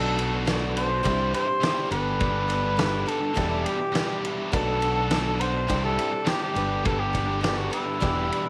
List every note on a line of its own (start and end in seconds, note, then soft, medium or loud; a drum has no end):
0.00 1.01 B1 loud
0.00 0.44 B2 medium
0.00 0.46 F#3 medium
0.00 0.17 A3 medium
0.00 0.33 B3 medium
0.00 0.33 D4 loud
0.00 0.38 D4 medium
0.00 1.02 D4 medium
0.00 0.30 F#4 loud
0.00 1.04 F#4 medium
0.00 0.38 A4 medium
0.00 0.42 A4 loud
0.00 1.04 A4 medium
0.00 0.38 B4 medium
0.00 1.04 B4 medium
0.17 0.45 A3 soft
0.17 0.46 D4 medium
0.17 0.46 F#4 medium
0.17 ride medium
0.31 0.46 B3 medium
0.31 0.48 D4 medium
0.31 0.48 F#4 medium
0.46 1.02 B2 medium
0.46 0.73 F#3 medium
0.46 1.04 A3 medium
0.46 0.74 B3 medium
0.46 0.95 D4 medium
0.46 0.76 D4 loud
0.46 0.77 F#4 loud
0.46 0.95 A4 medium
0.46 0.95 B4 medium
0.46 snare loud
0.46 ride loud
0.74 0.89 F#3 medium
0.74 0.89 B3 medium
0.74 0.90 D4 medium
0.74 0.89 F#4 medium
0.74 1.30 C5 loud
0.74 ride medium
0.90 muted overdriven electric guitar stroke soft
1.03 1.33 C2 loud
1.03 1.48 C3 loud
1.03 1.31 E3 medium
1.03 1.20 G3 loud
1.03 1.89 D4 medium
1.03 1.53 D4 medium
1.03 1.63 D4 medium
1.03 1.53 E4 medium
1.03 1.91 E4 medium
1.03 1.19 E4 loud
1.03 1.90 G4 medium
1.03 1.17 G4 loud
1.03 1.90 C5 medium
1.03 1.53 C5 medium
1.03 kick medium
1.03 ride loud
1.18 1.33 G3 medium
1.18 1.34 E4 medium
1.18 1.35 G4 medium
1.32 1.47 E3 medium
1.32 1.46 G3 medium
1.32 1.46 E4 medium
1.32 1.46 G4 medium
1.32 1.88 C5 loud
1.32 ride medium
1.47 muted overdriven electric guitar stroke soft
1.60 1.89 C3 medium
1.60 1.90 E3 medium
1.60 1.78 G3 medium
1.60 1.92 D4 medium
1.60 1.90 D4 medium
1.60 1.92 E4 medium
1.60 1.76 E4 loud
1.60 1.74 G4 loud
1.60 1.92 C5 medium
1.60 snare loud
1.60 ride loud
1.75 1.90 G3 medium
1.75 1.90 E4 medium
1.75 1.89 G4 medium
1.90 3.04 G1 loud
1.90 2.17 G2 loud
1.90 2.18 D3 loud
1.90 2.18 G3 loud
1.90 3.33 B3 medium
1.90 2.19 B3 loud
1.90 3.33 D4 medium
1.90 2.20 D4 loud
1.90 3.34 G4 medium
1.90 2.65 G4 medium
1.90 2.20 G4 loud
1.90 3.35 A4 medium
1.90 2.47 A4 medium
1.90 2.65 A4 medium
1.90 3.10 B4 loud
1.90 2.66 B4 medium
1.90 ride medium
2.18 2.76 G2 medium
2.18 2.77 D3 medium
2.18 2.65 G3 medium
2.18 2.64 B3 medium
2.18 2.64 D4 medium
2.18 2.62 G4 loud
2.18 kick loud
2.18 ride medium
2.48 2.77 B3 medium
2.48 2.78 D4 medium
2.48 2.78 A4 medium
2.48 ride medium
2.63 2.78 G3 medium
2.63 2.79 B3 medium
2.63 2.80 D4 medium
2.63 2.79 G4 medium
2.77 3.33 G2 medium
2.77 3.34 D3 medium
2.77 3.04 G3 medium
2.77 3.06 B3 medium
2.77 3.08 D4 medium
2.77 3.28 G4 medium
2.77 3.09 G4 loud
2.77 3.28 A4 medium
2.77 3.05 A4 medium
2.77 3.28 B4 loud
2.77 snare loud
2.77 ride loud
3.06 3.20 G3 medium
3.06 3.20 B3 medium
3.06 3.20 D4 medium
3.06 3.36 A4 medium
3.06 3.67 A4 loud
3.06 ride medium
3.10 3.20 G4 medium
3.21 muted overdriven electric guitar stroke medium
3.34 3.64 E1 loud
3.34 3.79 E2 loud
3.34 3.79 B2 loud
3.34 3.51 E3 loud
3.34 3.51 G3 loud
3.34 4.50 B3 medium
3.34 4.51 D4 medium
3.34 3.95 D4 medium
3.34 4.51 E4 medium
3.34 3.49 E4 loud
3.34 3.86 E4 medium
3.34 4.51 G4 medium
3.34 3.48 G4 loud
3.34 3.86 G4 medium
3.34 kick medium
3.34 ride medium
3.38 3.86 D5 medium
3.50 3.63 E3 medium
3.50 3.63 G3 medium
3.50 3.65 E4 medium
3.50 3.66 G4 medium
3.64 3.78 E3 medium
3.64 3.78 G3 medium
3.64 3.78 E4 medium
3.64 4.24 G4 medium
3.64 3.77 G4 medium
3.64 ride medium
3.79 muted overdriven electric guitar stroke medium
3.92 4.37 E2 medium
3.92 4.38 B2 medium
3.92 4.10 E3 loud
3.92 4.08 G3 medium
3.92 4.53 D4 medium
3.92 4.07 E4 medium
3.92 4.44 E4 medium
3.92 4.06 G4 loud
3.92 4.44 G4 medium
3.92 snare loud
3.92 ride loud
3.96 4.45 D5 medium
4.07 4.20 E3 medium
4.07 4.22 G3 medium
4.07 4.23 E4 medium
4.07 4.24 G4 medium
4.22 4.50 E3 medium
4.22 4.51 G3 medium
4.22 4.51 E4 medium
4.22 4.52 G4 medium
4.22 ride medium
4.50 5.65 B1 loud
4.50 5.08 B2 medium
4.50 5.09 F#3 loud
4.50 4.82 A3 loud
4.50 5.67 B3 medium
4.50 4.97 B3 loud
4.50 5.67 D4 medium
4.50 5.02 D4 medium
4.50 4.96 D4 medium
4.50 5.67 F#4 medium
4.50 4.94 F#4 loud
4.50 5.67 A4 medium
4.50 5.03 A4 medium
4.50 kick loud
4.50 ride loud
4.54 5.41 A4 loud
4.54 5.03 B4 medium
4.80 5.10 A3 soft
4.80 5.11 D4 medium
4.80 5.10 F#4 medium
4.80 ride medium
4.95 5.10 B3 medium
4.95 5.12 D4 medium
4.95 5.12 F#4 medium
5.09 5.66 B2 loud
5.09 5.37 F#3 medium
5.09 5.40 A3 medium
5.09 5.38 B3 medium
5.09 5.60 D4 medium
5.09 5.40 D4 medium
5.09 5.40 F#4 medium
5.09 5.61 A4 medium
5.09 5.61 D5 medium
5.09 snare loud
5.09 ride loud
5.38 5.53 F#3 medium
5.38 5.69 A3 soft
5.38 5.53 B3 medium
5.38 5.53 D4 medium
5.38 5.53 F#4 medium
5.38 5.84 C5 loud
5.38 ride medium
5.54 muted overdriven electric guitar stroke soft
5.67 5.97 C2 loud
5.67 6.12 C3 loud
5.67 5.95 E3 loud
5.67 5.84 G3 loud
5.67 6.55 C4 medium
5.67 6.54 D4 medium
5.67 6.18 D4 medium
5.67 6.28 D4 loud
5.67 6.55 E4 medium
5.67 6.18 E4 medium
5.67 5.82 E4 loud
5.67 6.54 G4 medium
5.67 5.80 G4 loud
5.67 6.18 C5 medium
5.67 kick medium
5.67 ride loud
5.81 5.96 G3 medium
5.81 5.97 E4 medium
5.81 5.98 G4 medium
5.81 6.30 A4 loud
5.96 6.11 E3 medium
5.96 6.11 G3 medium
5.96 6.10 E4 medium
5.96 6.11 G4 medium
5.96 ride medium
6.12 muted overdriven electric guitar stroke soft
6.25 6.53 C3 medium
6.25 6.54 E3 medium
6.25 6.41 G3 medium
6.25 6.57 D4 medium
6.25 6.55 D4 medium
6.25 6.39 E4 medium
6.25 6.56 E4 medium
6.25 6.38 G4 loud
6.25 6.57 C5 medium
6.25 snare loud
6.25 ride medium
6.29 6.42 G4 loud
6.39 6.53 G3 medium
6.39 6.54 E4 medium
6.39 6.53 G4 medium
6.43 6.88 G4 loud
6.53 7.68 G1 loud
6.53 6.81 G2 medium
6.53 6.82 D3 loud
6.53 6.83 G3 loud
6.53 7.99 B3 medium
6.53 6.83 B3 loud
6.53 7.99 D4 medium
6.53 6.84 D4 loud
6.53 7.99 G4 medium
6.53 6.85 G4 medium
6.53 7.30 G4 medium
6.53 7.12 A4 medium
6.53 7.99 A4 medium
6.53 7.30 A4 medium
6.53 7.30 B4 loud
6.53 ride medium
6.82 7.39 G2 medium
6.82 7.40 D3 medium
6.82 7.29 G3 medium
6.82 7.28 B3 loud
6.82 7.27 D4 medium
6.82 7.26 G4 loud
6.82 7.02 A4 loud
6.82 kick loud
6.82 ride loud
7.00 7.42 G4 loud
7.13 7.42 B3 soft
7.13 7.42 D4 medium
7.13 7.43 A4 medium
7.13 kick medium
7.13 ride medium
7.27 7.41 G3 medium
7.27 7.42 B3 medium
7.27 7.42 D4 medium
7.27 7.43 G4 medium
7.41 7.98 G2 medium
7.41 7.99 D3 medium
7.41 7.69 G3 medium
7.41 7.70 B3 medium
7.41 7.71 D4 loud
7.41 7.59 G4 medium
7.41 7.92 G4 medium
7.41 7.72 G4 loud
7.41 7.93 A4 medium
7.41 7.69 A4 medium
7.41 7.93 B4 medium
7.41 snare loud
7.41 ride medium
7.57 7.72 F#4 medium
7.70 7.85 G3 medium
7.70 7.84 B3 medium
7.70 7.84 D4 medium
7.70 8.49 E4 medium
7.70 7.84 G4 medium
7.70 8.00 A4 soft
7.70 ride medium
7.85 muted overdriven electric guitar stroke medium
8.00 8.29 E1 loud
8.00 8.44 E2 loud
8.00 8.45 B2 medium
8.00 8.17 E3 medium
8.00 8.15 G3 loud
8.00 8.49 B3 medium
8.00 8.14 B3 medium
8.00 8.49 D4 medium
8.00 8.49 E4 medium
8.00 8.49 G4 medium
8.00 8.13 G4 loud
8.00 8.49 D5 medium
8.00 kick medium
8.00 ride medium
8.15 8.27 E3 medium
8.15 8.28 G3 medium
8.15 8.29 B3 medium
8.15 8.31 G4 medium
8.28 8.43 E3 medium
8.28 8.43 G3 medium
8.28 8.43 B3 medium
8.28 8.42 G4 medium
8.32 ride medium
8.43 muted overdriven electric guitar stroke medium